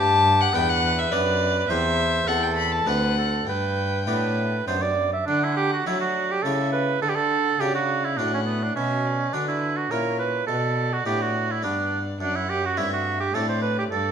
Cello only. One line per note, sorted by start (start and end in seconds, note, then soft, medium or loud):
0.00 0.54 G2 loud
0.55 1.11 E2 medium
1.13 1.69 F#2 medium
1.70 2.27 E2 medium
2.27 2.86 E2 medium
2.86 3.45 D2 medium
3.46 4.08 G2 medium
4.07 4.67 A2 medium
4.68 5.27 F#2 medium
5.28 5.83 D3 medium
5.87 6.44 F#3 medium
6.45 7.02 C#3 medium
7.03 7.60 D3 medium
7.61 8.20 C#3 medium
8.18 8.77 A2 medium
8.77 9.34 B2 medium
9.35 9.90 D3 medium
9.92 10.48 A#2 medium
10.49 11.05 B2 medium
11.07 11.66 A2 medium
11.64 12.20 G2 medium
12.20 12.80 F#2 medium
12.78 13.34 G2 medium
13.35 13.91 A2 medium
13.92 14.12 G2 medium